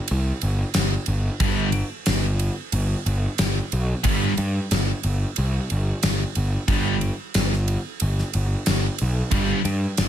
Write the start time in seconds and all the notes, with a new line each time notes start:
0.08 C2, ride
0.41 G1, ride
0.74 G1, snare, ride
1.06 G1, ride
1.40 G1 G2 D3 G3, kick, ride
1.72 ride
2.06 G1, snare, ride
2.39 ride
2.72 G1, ride
3.06 G1, ride
3.38 G1, snare, ride
3.72 B1, ride
4.04 G1 G2 D3 G3, kick, ride
4.37 G2, ride
4.71 G1, snare, ride
5.03 G1, ride
5.36 C2, ride
5.70 G1, ride
6.03 G1, snare, ride
6.35 G1, ride
6.68 G1 G2 D3 G3, kick, ride
7.01 ride
7.34 G1, snare, ride
7.53 snare
7.68 ride
8.00 G1, ride
8.18 snare
8.33 G1, ride
8.66 G1, snare, ride
8.98 B1, ride
9.31 G1 G2 D3 G3, kick, ride
9.65 G2, ride
9.97 G1, snare, ride